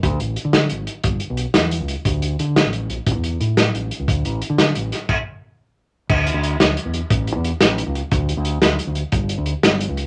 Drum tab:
CC |------------|------------|------x-----|x-----------|
HH |xxxxxxxxxxxx|xxxxxxxxxxxx|xxxxxx------|-xxxxxxxxxxx|
SD |---o-----o--|---o-----o--|---o-o------|---o-----o--|
BD |o-----o-----|o-----o-----|o-----o-----|o-----o-----|

CC |------------|
HH |xxxxxxxxxxxx|
SD |---o-----o--|
BD |o-----o-----|